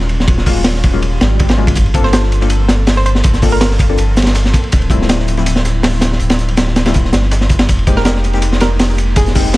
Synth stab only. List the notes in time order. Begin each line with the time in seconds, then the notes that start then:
0.46 F#3 G#3 A#3 C#4 F4
0.93 F#3 G#3 A#3 C#4 F4
1.57 F#3 G#3 A#3 C#4 F4
1.95 A#3 C4 D4 F4 A4
2.41 A#3 C4 D4 F4 A4
3.43 A#3 C4 D4 F4 A4
3.89 A#3 C4 D4 F4 A4
4.91 F3 G3 A3 C4 E4
5.38 F3 G3 A3 C4 E4
6.86 F3 G3 A3 C4 E4
7.87 G#3 A#3 C4 D#4 G4
8.34 G#3 A#3 C4 D#4 G4
9.35 G#3 A#3 C4 D#4 G4